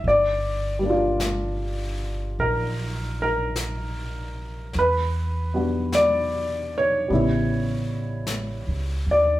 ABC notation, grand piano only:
X:1
M:4/4
L:1/8
Q:"Swing" 1/4=51
K:Glyd
V:1 name="Grand piano"
d3 z _B B2 z | B2 d c4 d |]
V:2 name="Grand piano"
z [G,_B,D=F]6- [G,B,DF] | z [G,B,DF]3 [C,G,B,E]4 |]